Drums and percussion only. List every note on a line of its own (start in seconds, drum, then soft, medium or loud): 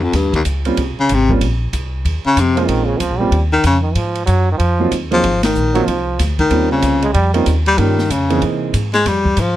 0.13 kick soft
0.13 snare soft
0.13 ride medium
0.33 kick soft
0.33 ride soft
0.45 kick soft
0.45 hi-hat pedal medium
0.45 ride medium
0.65 ride soft
0.77 kick soft
0.77 ride medium
1.09 kick soft
1.09 hi-hat pedal soft
1.09 ride medium
1.29 kick soft
1.41 kick soft
1.41 ride medium
1.73 kick soft
1.73 hi-hat pedal medium
1.73 ride medium
2.05 kick soft
2.05 ride medium
2.37 kick soft
2.37 hi-hat pedal medium
2.37 ride medium
2.57 ride soft
2.69 kick soft
2.69 ride medium
3.00 kick soft
3.00 hi-hat pedal soft
3.00 ride medium
3.32 kick soft
3.32 ride medium
3.64 kick soft
3.64 hi-hat pedal medium
3.64 ride medium
3.95 kick soft
3.95 ride medium
4.15 ride soft
4.27 kick soft
4.27 hi-hat pedal medium
4.27 ride medium
4.59 kick soft
4.59 ride medium
4.92 kick soft
4.92 hi-hat pedal medium
4.92 ride medium
5.12 ride soft
5.24 kick soft
5.24 ride medium
5.43 snare medium
5.43 ride medium
5.55 hi-hat pedal medium
5.75 ride soft
5.88 kick soft
5.88 ride medium
6.19 kick soft
6.19 snare soft
6.19 hi-hat pedal soft
6.19 ride medium
6.39 kick soft
6.39 ride soft
6.51 kick soft
6.51 ride medium
6.82 kick soft
6.82 hi-hat pedal soft
6.82 ride medium
7.02 ride soft
7.14 kick soft
7.14 ride medium
7.34 ride soft
7.46 kick soft
7.46 hi-hat pedal medium
7.46 ride medium
7.66 ride soft
7.78 kick soft
7.78 ride medium
7.99 snare soft
8.10 kick soft
8.10 hi-hat pedal medium
8.10 ride medium
8.30 ride soft
8.42 kick soft
8.42 ride medium
8.74 kick soft
8.74 hi-hat pedal medium
8.74 ride medium
8.93 snare soft
8.93 ride soft
9.06 kick soft
9.06 snare soft
9.06 ride medium
9.25 kick medium
9.37 kick soft
9.37 hi-hat pedal soft
9.37 ride medium